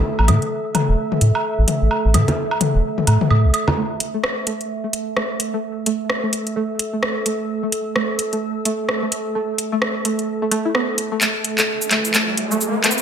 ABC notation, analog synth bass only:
X:1
M:4/4
L:1/16
Q:"Swing 16ths" 1/4=129
K:C
V:1 name="Analog synth bass" clef=bass
z A,,, A,, z4 E,,, z2 A,, z2 A,,, z A,,, | z A,,, A,, z4 E,,, z2 A,, z A,, B,,, z2 | z16 | z16 |
z16 | z16 | z16 |]